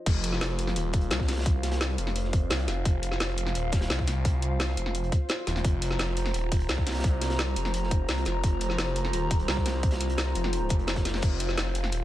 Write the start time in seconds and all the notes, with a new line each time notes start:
0.06 F1 F4 C5 F5, kick, closed hi-hat, crash
0.24 closed hi-hat
0.33 snare
0.41 F1, snare, closed hi-hat
0.59 closed hi-hat
0.67 snare, closed hi-hat
0.76 D#1, closed hi-hat
0.93 kick, closed hi-hat
1.01 closed hi-hat
1.11 C2, snare, closed hi-hat
1.20 kick, snare
1.28 snare, closed hi-hat
1.32 snare, closed hi-hat
1.37 snare, closed hi-hat
1.41 snare, closed hi-hat
1.46 kick, closed hi-hat
1.63 snare, closed hi-hat
1.72 snare, closed hi-hat
1.81 snare, closed hi-hat
1.98 F1, closed hi-hat
2.07 snare, closed hi-hat
2.16 closed hi-hat
2.24 snare
2.33 kick, closed hi-hat
2.50 C2, snare, closed hi-hat
2.68 F1, snare, closed hi-hat
2.85 F1, kick, closed hi-hat
3.03 closed hi-hat
3.12 snare
3.20 F1, snare, closed hi-hat
3.38 closed hi-hat
3.46 snare, closed hi-hat
3.55 D#1, closed hi-hat
3.72 kick, snare, closed hi-hat
3.81 snare, closed hi-hat
3.90 C2, snare, closed hi-hat
3.99 kick, snare
4.07 snare, closed hi-hat
4.25 kick, closed hi-hat
4.42 closed hi-hat
4.60 snare, closed hi-hat
4.77 F1, closed hi-hat
4.86 snare
4.95 closed hi-hat
5.04 closed hi-hat
5.12 kick, closed hi-hat
5.29 snare, closed hi-hat
5.47 D#1, snare, closed hi-hat
5.56 snare, closed hi-hat
5.64 F1 A#5, kick, closed hi-hat
5.82 closed hi-hat
5.91 snare
5.99 F1, snare, closed hi-hat
6.17 closed hi-hat
6.26 snare, closed hi-hat
6.34 D#1, closed hi-hat
6.52 kick, closed hi-hat
6.60 closed hi-hat
6.69 C2, snare, closed hi-hat
6.78 kick, snare
6.86 snare, closed hi-hat
6.90 snare, closed hi-hat
6.95 snare, closed hi-hat
7.00 snare, closed hi-hat
7.04 kick, closed hi-hat
7.21 snare, closed hi-hat
7.30 snare, closed hi-hat
7.39 snare, closed hi-hat
7.56 F1, closed hi-hat
7.65 snare, closed hi-hat
7.74 closed hi-hat
7.83 snare
7.91 kick, closed hi-hat
8.08 C2, snare, closed hi-hat
8.18 closed hi-hat
8.25 F1, snare, closed hi-hat
8.44 F1, kick, closed hi-hat
8.61 closed hi-hat
8.70 snare
8.78 F1, snare, closed hi-hat
8.96 closed hi-hat
9.05 snare, closed hi-hat
9.13 D#1, closed hi-hat
9.31 kick, closed hi-hat
9.39 closed hi-hat
9.48 C2, snare, closed hi-hat
9.57 kick, snare
9.66 snare, closed hi-hat
9.74 snare
9.83 kick, closed hi-hat
9.91 snare, closed hi-hat
10.00 snare, closed hi-hat
10.10 closed hi-hat
10.18 snare, closed hi-hat
10.35 F1, closed hi-hat
10.44 snare
10.53 closed hi-hat
10.69 F1, kick, closed hi-hat
10.79 closed hi-hat
10.87 snare, closed hi-hat
10.96 kick, snare, closed hi-hat
11.05 snare, closed hi-hat
11.14 snare, closed hi-hat
11.22 F1 F5, kick, closed hi-hat, crash
11.40 closed hi-hat
11.49 snare
11.57 F1, snare, closed hi-hat
11.75 closed hi-hat
11.84 snare, closed hi-hat
11.92 D#1, closed hi-hat